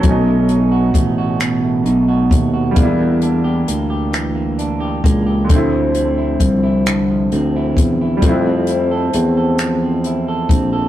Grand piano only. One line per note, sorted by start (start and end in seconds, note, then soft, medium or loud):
0.00 2.70 F#3 medium
0.00 2.72 A3 medium
0.07 2.74 C#4 medium
0.07 2.76 D#4 medium
2.71 5.42 G3 medium
2.75 5.45 A#3 medium
2.75 5.46 D4 medium
2.83 5.48 E4 medium
5.44 8.15 D3 medium
5.44 8.17 A3 medium
5.52 8.19 C4 medium
5.52 8.21 E4 medium
8.17 10.88 G3 medium
8.17 10.88 A3 medium
8.25 10.88 C4 medium
8.25 10.88 E4 medium